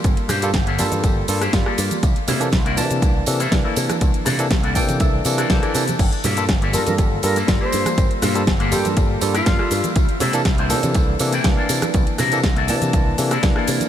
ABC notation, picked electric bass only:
X:1
M:4/4
L:1/16
Q:1/4=121
K:Cmix
V:1 name="Picked electric bass" clef=bass
G,,, z G,,2 G,,,2 G,, G,, G,,, z G,, z G,,, z G,, z | C,, z C,2 C,,2 C, C, C,, z C, z C,, z C, z | C,, z C,2 C,,2 C, C, C,, z C, z C,, z C, z | G,,, z G,,2 G,,,2 G,, G,, G,,, z G,, z G,,, z G,, z |
G,,, z G,,2 G,,,2 G,, G,, G,,, z G,, z G,,, z G,, z | C,, z C,2 C,,2 C, C, C,, z C, z C,, z C, z | C,, z C,2 C,,2 C, C, C,, z C, z C,, z C, z |]